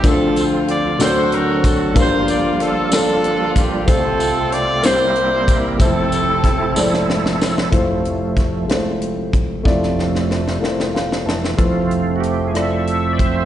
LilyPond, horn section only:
\new Staff \with { instrumentName = "Horn section" } { \time 6/8 \key f \major \tempo 4. = 62 << { a'8 r8 d''8 c''8 bes'8 a'8 | c''8 d''8 a'8 a'4 g'8 | a'4 d''8 c''4 r8 | a'2 r4 |
r2. | r2. | r2. | } \\ { <c' f'>4. <fis' a'>4. | f'4. <d' f'>4. | <c' f'>4. <e' g'>4. | <c' e'>2 r4 |
r2. | r2. | r2. | } >> }